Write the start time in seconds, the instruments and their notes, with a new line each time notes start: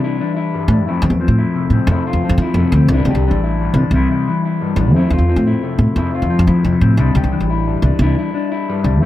Already playing: clean electric guitar C3 E3 G3 D4
0.04 clean electric guitar E4
0.20 clean electric guitar E3 D4
0.36 clean electric guitar E4
0.54 clean electric guitar G2 G3
0.68 upright bass A2, clean electric guitar D4
0.84 upright bass F2, clean electric guitar F2 A3
0.88 clean electric guitar C4 E4
1.02 upright bass E2
1.06 upright bass E2, muted clean electric guitar stroke
1.20 clean electric guitar F3 C4
1.28 upright bass A2
1.38 clean electric guitar E4
1.55 clean electric guitar C3 A3
1.70 upright bass A2, clean electric guitar C4
1.87 upright bass F2, clean electric guitar F2 A3
1.91 clean electric guitar C4 E4
2.07 clean electric guitar F4
2.13 upright bass E2
2.24 clean electric guitar F3 C4
2.29 upright bass F2
2.38 upright bass F3
2.42 clean electric guitar E4
2.54 upright bass F2, clean electric guitar C3
2.58 clean electric guitar A3
2.72 upright bass D2, clean electric guitar C4
2.88 upright bass C2, clean electric guitar C3 G3
2.93 clean electric guitar D4 E4
3.05 upright bass C2
3.11 clean electric guitar G4
3.15 upright bass C2
3.27 upright bass A1, clean electric guitar E3 D4
3.44 clean electric guitar E4
3.60 clean electric guitar G2 G3
3.74 upright bass C2, clean electric guitar D4
3.91 upright bass C2, clean electric guitar C3 G3
3.95 clean electric guitar E4, muted clean electric guitar stroke
4.12 clean electric guitar E4
4.28 clean electric guitar E3, muted clean electric guitar stroke
4.45 clean electric guitar E4
4.61 clean electric guitar G2 G3
4.76 upright bass A1, clean electric guitar D4
4.93 upright bass F2, clean electric guitar F2 A3 C4 E4
5.10 upright bass E2, clean electric guitar F4
5.18 upright bass E2
5.29 clean electric guitar F3 C4
5.36 upright bass A2
5.47 clean electric guitar E4
5.63 clean electric guitar C3 A3
5.79 upright bass A2, muted clean electric guitar stroke
5.95 clean electric guitar F2 A3 C4 E4, upright bass F2
6.14 clean electric guitar F4
6.22 upright bass E2
6.30 clean electric guitar F3 C4
6.39 upright bass F2
6.47 upright bass F3, clean electric guitar E4
6.63 upright bass F2, clean electric guitar C3
6.72 clean electric guitar A3
6.81 upright bass A2, clean electric guitar C4
6.97 upright bass C2, clean electric guitar C3 G3 D4 E4
7.15 upright bass C2, clean electric guitar G4
7.24 upright bass C2
7.31 clean electric guitar E3 D4
7.41 upright bass A1
7.50 clean electric guitar E4
7.67 clean electric guitar G2 G3
7.82 upright bass C2, clean electric guitar D4
7.99 upright bass C2, clean electric guitar G3 D4 E4, muted clean electric guitar stroke
8.19 clean electric guitar E4
8.33 clean electric guitar D4, muted clean electric guitar stroke
8.52 clean electric guitar E4
8.68 clean electric guitar G2 G3
8.84 upright bass C2, clean electric guitar D4
9.01 clean electric guitar F2 A3, upright bass F2